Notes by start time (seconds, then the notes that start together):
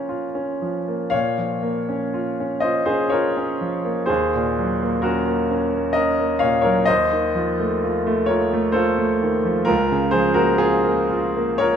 Already playing: A#2 F3 A#3 C#4 F4 A#4
0.09 F4
0.35 C#4
0.62 F3
0.88 A#3
1.10 A#2 C#5 F5
1.38 F3
1.63 A#3
1.89 C#4
2.14 F4
2.40 C#4
2.60 F4 C5 D#5
2.85 C#4 G#4 C5
3.10 F4 A#4 C#5
3.37 C#4
3.61 F3
3.85 A#3
4.06 D#2 G#4 C5
4.35 A#2
4.59 F#3
4.83 A#3
5.02 C#4 F#4 A#4
5.27 A#3
5.51 C#4
5.73 A#3
5.93 C#4 A#4 D#5
6.20 A#3
6.39 A#2 C#5 F5
6.61 F#3 A#4 C#5
6.85 D#2 C5 D#5
7.13 D#3
7.35 F3
7.59 A3
7.84 F4
8.07 A3
8.26 F4 A#4 C#5
8.53 A3
8.72 F4 A4 C5
8.98 A3
9.22 D#3
9.45 F3
9.65 C#2 F4 A#4
9.92 C#3
10.11 F3 G#4 C5
10.34 A#3 F#4 A#4
10.58 F4 G#4
10.84 A#3
11.10 F4
11.37 A#3
11.58 F4 A#4 C#5